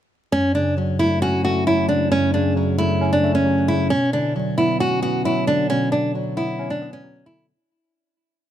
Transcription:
0.32 1.44 F#2 medium
0.32 0.51 C#4 loud
0.55 1.67 C#3 medium
0.55 0.74 D4 medium
0.77 1.66 F#3 medium
0.99 1.43 A3 medium
0.99 1.18 E4 medium
1.22 2.34 C#4 loud
1.22 1.41 F#4 medium
1.44 2.56 A3 medium
1.44 1.63 F#4 medium
1.67 2.55 F#3 medium
1.67 1.86 E4 medium
1.89 2.33 C#3 medium
1.89 2.08 D4 medium
2.12 3.24 F#2 medium
2.12 2.30 C#4 loud
2.34 3.46 C#3 medium
2.34 2.53 D4 medium
2.56 3.45 F#3 medium
2.78 3.22 A3 medium
2.78 3.10 E4 medium
3.01 3.91 C#4 medium
3.13 3.31 D4 medium
3.23 3.91 A3 medium
3.35 3.66 C#4 medium
3.46 3.91 F#3 medium
3.68 3.91 C#3 medium
3.68 3.87 E4 medium
3.90 5.03 B2 medium
3.90 4.09 C#4 loud
4.13 5.25 D3 medium
4.13 4.32 D4 medium
4.36 5.24 F#3 medium
4.58 5.01 B3 medium
4.58 4.77 E4 medium
4.80 5.92 C#4 medium
4.80 4.99 F#4 loud
5.03 6.15 B3 medium
5.03 5.21 F#4 medium
5.25 6.13 F#3 medium
5.25 5.44 E4 medium
5.47 5.91 D3 medium
5.47 5.66 D4 medium
5.70 6.82 B2 medium
5.70 5.89 C#4 medium
5.92 7.04 D3 medium
5.92 6.11 D4 medium
6.15 7.03 F#3 medium
6.37 6.80 B3 medium
6.37 6.68 E4 medium
6.59 7.49 C#4 loud
6.70 6.89 D4 medium
6.82 7.49 B3 medium
6.93 7.24 C#4 medium
7.04 7.49 F#3 medium
7.26 7.49 D3 medium
7.26 7.45 E4 medium

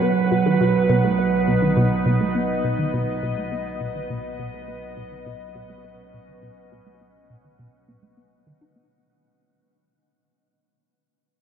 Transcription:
0.00 9.02 B1 medium
0.00 9.05 F#3 medium
0.00 9.05 B3 medium
0.00 0.07 B3 medium
0.00 9.05 B4 medium
0.00 1.55 C#5 medium
0.00 9.06 F#5 medium
0.08 5.21 D#4 medium
0.32 0.36 B2 medium
0.46 0.50 D#3 medium
0.61 0.65 B2 loud
0.80 9.05 D#5 medium
0.89 1.00 B2 medium
1.04 1.08 A3 medium
1.19 1.23 B3 medium
1.48 1.52 B2 medium
1.62 1.67 D#3 medium
1.77 1.81 B2 medium
2.06 2.17 B2 loud
2.21 2.25 A3 medium
2.35 2.40 B3 medium
2.64 2.69 B2 medium
2.79 2.83 D#3 medium
2.94 2.98 B2 medium
3.23 3.34 B2 medium
3.37 3.42 A3 medium
3.52 3.56 B3 medium
3.81 3.85 B2 medium
3.95 4.00 D#3 medium
4.10 4.14 B2 medium
4.39 4.50 B2 medium
4.54 4.58 A3 medium
4.68 4.72 B3 medium
4.97 5.02 B2 medium
5.04 9.05 C#4 medium
5.12 5.16 D#3 medium
5.26 5.31 B2 loud
5.55 5.66 B2 medium
5.70 5.74 A3 medium
5.84 5.89 B3 medium
6.14 6.18 B2 medium
6.28 6.33 D#3 medium
6.43 6.47 B2 medium
6.72 6.83 B2 medium
6.87 6.91 A3 medium
7.01 7.06 B3 medium
7.30 7.35 B2 medium
7.44 7.49 D#3 medium
7.59 7.64 B2 medium
7.88 7.99 B2 medium
8.03 8.07 A3 medium
8.17 8.25 B3 medium
8.47 8.51 D#3 medium
8.61 8.69 D#4 medium
8.76 8.80 B3 medium

